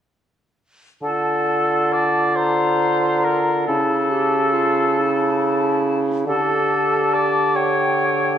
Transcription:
1.02 3.64 D3 soft
1.02 3.64 F4 soft
1.02 1.94 A4 medium
1.02 2.33 A5 soft
1.93 2.37 D5 medium
2.36 3.26 C5 medium
2.36 3.68 A#5 soft
3.24 3.66 A#4 soft
3.67 6.24 C#3 soft
3.67 4.12 E4 soft
3.67 5.80 A4 medium
3.67 6.00 A5 soft
4.11 4.55 G4 soft
4.53 5.00 F4 soft
4.98 6.27 E4 soft
6.26 8.38 D3 medium
6.26 8.38 G4 soft
6.26 7.15 A4 medium
6.26 7.55 A5 soft
7.14 7.57 D5 medium
7.55 8.38 C#5 medium
7.55 8.38 G5 soft

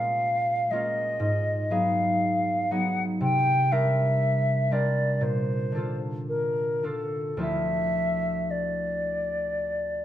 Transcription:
0.00 1.25 A#2 soft
0.00 0.70 G#3 soft
0.00 0.71 A#3 soft
0.00 0.71 C#4 soft
0.00 0.72 F4 soft
0.00 0.72 F5 medium
0.71 3.25 G#3 soft
0.71 1.26 A#3 soft
0.71 1.26 C#4 soft
0.71 1.26 F4 soft
0.71 1.73 D#5 medium
1.20 3.24 G#2 medium
1.70 2.70 F#3 soft
1.70 2.70 B3 soft
1.70 2.71 D#4 soft
1.70 2.71 G#4 soft
1.70 2.73 F5 medium
2.71 3.25 F#3 soft
2.71 3.25 B3 soft
2.71 3.25 D#4 soft
2.71 3.26 G#4 soft
2.71 3.04 F#5 medium
3.21 5.26 C3 medium
3.21 3.73 G5 medium
3.71 4.70 G3 soft
3.71 4.70 C4 soft
3.71 4.71 D4 soft
3.71 4.71 A#4 soft
3.71 4.74 E5 medium
4.71 5.26 G3 soft
4.71 5.26 C4 soft
4.71 5.73 D4 soft
4.71 7.44 A#4 soft
4.71 5.24 D5 medium
5.21 7.43 A#2 soft
5.21 5.98 C5 medium
5.72 6.82 D3 soft
5.72 6.82 D4 soft
5.72 6.83 A4 soft
5.77 6.83 F4 soft
6.28 6.86 A#4 soft
6.83 7.45 D3 soft
6.83 10.05 D4 soft
6.83 10.05 F4 soft
6.83 7.40 A4 soft
7.37 10.05 D2 soft
7.37 10.05 F3 soft
7.37 10.05 C4 soft
7.37 10.05 E4 soft
7.37 10.05 A4 soft
7.37 8.52 E5 medium
8.50 10.05 D5 soft

